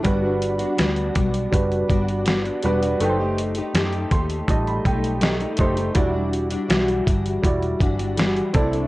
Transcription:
<<
  \new Staff \with { instrumentName = "Upright piano" } { \time 4/4 \key e \minor \tempo 4 = 81 << { r1 | r4. c'''8 a''16 b''16 g''8 dis''8 dis''8 | r1 | } \\ { <g d' fis' b'>4. r8 <g d' fis' b'>4 r8 <g d' fis' b'>8 | <a dis' b' c'' g''>4. r8 <g a dis' dis''>4 r8 <a dis' g' c''>8 | <g e' fis' d''>4. r8 <g e' fis' d''>4 r8 <c' e' a' d''>8 | } >> }
  \new Staff \with { instrumentName = "Steel-string acoustic guitar" } { \time 4/4 \key e \minor <g b d' fis'>16 <b d' fis'>8 <b d' fis'>16 <g b d' fis'>8 <g b d' fis'>4 <g b d' fis'>8 <g b d' fis'>16 <b d' fis'>16 <g b d' fis'>16 <b d' fis'>16 | <fis a dis' g'>16 <a dis' g'>8 <a dis' g'>16 <a dis' g'>8 <a dis' g'>4 <a dis' g'>8 <fis a dis' g'>16 <a dis' g'>16 <fis a dis' g'>16 <a dis' g'>16 | <e g d' fis'>16 <g d' fis'>8 <g d' fis'>16 <e g d' fis'>8 <e g d' fis'>4 <e g d' fis'>16 <g d' fis'>16 <e g d' fis'>8 <c a d' e'>16 <a d' e'>16 | }
  \new Staff \with { instrumentName = "Picked electric bass" } { \clef bass \time 4/4 \key e \minor g,,4 d,8 b,,8 fis,,8 g,,4 e,,8 | fis,,4 fis,8 dis,8 a,,8 b,,4 fis,,8 | e,,4 b,,8 g,,8 e,,8 g,,4 c,8 | }
  \new DrumStaff \with { instrumentName = "Drums" } \drummode { \time 4/4 <hh bd>8 hh16 hh16 <hh sn>16 hh16 <hh bd>16 hh16 <hh bd>16 hh16 <hh bd>16 hh16 <hh sn>16 hh16 hh16 hh16 | hh8 hh16 hh16 <hh sn>16 hh16 <hh bd>16 hh16 <hh bd>16 hh16 <hh bd>16 hh16 <hh sn>16 hh16 <hh bd>16 hh16 | <hh bd>8 hh16 hh16 <hh sn>16 hh16 <hh bd>16 hh16 <hh bd>16 hh16 <hh bd>16 hh16 <hh sn>16 hh16 <hh bd>16 hh16 | }
>>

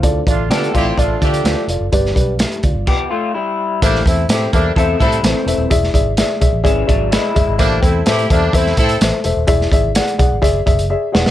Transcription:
<<
  \new Staff \with { instrumentName = "Upright piano" } { \time 4/4 \key d \dorian \tempo 4 = 127 <e' f' a' c'' d''>8 <f' a' d''>8 <f' a' d''>8 <f' a' d''>8 <f' a' d''>8 <f' a' d''>8 <f' a' d''>8 <f' a' d''>8 | <g' b' d''>8 <g' b' d''>8 <g' e''>8 <f' d''>4 r4. | \key a \phrygian <a' c'' e''>8 <a' c'' e''>8 <a' c'' e''>8 <a' c'' e''>8 <a' c'' e''>8 <a' c'' e''>8 <a' c'' e''>8 <a' c'' e''>8 | <gis' d'' e''>8 <gis' d'' e''>8 <gis' d'' e''>8 <gis' d'' e''>8 <gis' d'' e''>8 <gis' d'' e''>8 <gis' d'' e''>8 <gis' d'' e''>8 |
<a' c'' e''>8 <a' c'' g''>8 <a' c'' e''>8 <a' c'' e''>8 <a' c'' e''>8 <a' c'' e''>8 <a' c'' e''>8 <a' c'' e''>8 | <gis' d'' e''>8 <gis' d'' e''>8 <gis' d'' fis''>8 <gis' d'' fis''>8 <gis' d'' e''>8 <gis' d'' e''>8 <gis' d'' e''>8 <gis' d'' fis''>8 | }
  \new Staff \with { instrumentName = "Upright piano" } { \clef bass \time 4/4 \key d \dorian d4. r2 r8 | g,4. r2 r8 | \key a \phrygian a,4. r2 r8 | e4. r2 r8 |
a,4. r2 r8 | e4. r2 r8 | }
  \new Staff \with { instrumentName = "Horn section" } { \time 4/4 \key d \dorian r8 <a d' f'>8 <d' f' a'>8 <c' e' g'>8 <a d' f'>8 <a d' g'>4 r8 | r1 | \key a \phrygian <g bes d'>8 <a c' e'>8 <c' e' g'>8 <g bes d'>8 <a c' e'>8 <c' e' a'>8 r4 | r1 |
<g bes d'>8 <a c' e'>8 <c' e' g'>8 <g bes d'>8 <a c' e'>8 <c' e' a'>8 r4 | r1 | }
  \new Staff \with { instrumentName = "Clean electric guitar" } { \time 4/4 \key d \dorian r4 <b g'>8 <a f'>8 <f d'>4. r8 | r2 <b g'>8 <a f'>8 <g e'>4 | \key a \phrygian r2 <c' a'>8 <g e'>8 <e c'>4 | r2 <e cis'>8 <fis d'>8 <gis e'>4 |
r1 | r1 | }
  \new Staff \with { instrumentName = "Fingered electric bass" } { \clef bass \time 4/4 \key d \dorian d,8 a,,8 d8 a,,8 a,,8 d8 d,16 r16 f,,16 fis,,16 | g,,8 b,,8. r16 d,16 g,,16 r2 | \key a \phrygian a,,8 e,8 a,8 e,8 e,8 a,8 a,,16 r16 e,,16 ees,,16 | e,,8 gis,,8. r16 b,,16 a,,16 gis,,8 gis,,8. r16 fis,,16 gis,,16 |
a,,8 e,8 a,8 e,8 e,8 a,8 a,,16 r16 e,,16 ees,,16 | e,,8 gis,,8. r16 b,,16 gis,,16 fis,,8 fis,,8. r16 e,,16 r16 | }
  \new DrumStaff \with { instrumentName = "Drums" } \drummode { \time 4/4 <hh bd>8 <hh bd>8 <hh sn>16 hh16 <hh bd>8 <hh bd>8 <hh bd>16 hh16 <hh sn>8 hh8 | <hh bd>16 sn16 <hh bd>8 <hh sn>16 hh16 <hh bd>8 <cymc bd>4 r4 | <hh bd>16 sn16 <hh bd>8 <hh sn>8 <hh bd>8 <hh bd>8 <hh bd>16 hh16 <hh sn>8 hh8 | <hh bd>16 sn16 <hh bd>8 <hh sn>8 <hh bd>8 <hh bd>8 <hh bd>8 <hh sn>8 <hh bd>8 |
<hh bd>8 <hh bd>8 <hh sn>16 hh16 <hh bd>8 <hh bd>16 sn16 <hh bd>16 hh16 <hh sn>8 hh8 | <hh bd>16 sn16 <hh bd>8 <hh sn>16 hh16 <hh bd>8 <hh bd>8 <hh bd>16 hh16 r8 sn16 sn16 | }
>>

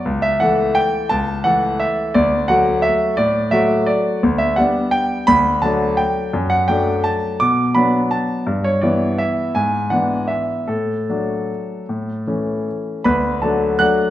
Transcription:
<<
  \new Staff \with { instrumentName = "Grand piano" } { \time 3/4 \key d \major \tempo 4 = 168 r8 e''8 fis''4 g''4 | a''4 fis''4 e''4 | d''4 fis''4 e''4 | d''4 e''4 d''4 |
r8 e''8 fis''4 g''4 | b''4 a''4 g''4 | r8 fis''8 g''4 a''4 | d'''4 b''4 a''4 |
r8 cis''8 d''4 e''4 | gis''4 fis''4 e''4 | a'2.~ | a'2 r4 |
<b' b''>4 <a' a''>4 <fis'' fis'''>4 | }
  \new Staff \with { instrumentName = "Grand piano" } { \time 3/4 \key d \major cis,4 <e a a'>2 | cis,4 <e a a'>2 | d,4 <fis a fis'>2 | a,4 <fis a fis'>2 |
d,4 <g b d'>2 | d,4 <fis a d'>2 | fis,4 <fis a d'>2 | b,4 <fis b d'>2 |
g,4 <e b e'>2 | gis,4 <e b d'>2 | a,4 <fis a d'>2 | a,4 <e a cis'>2 |
d,4 <fis a d'>4 <fis a d'>4 | }
>>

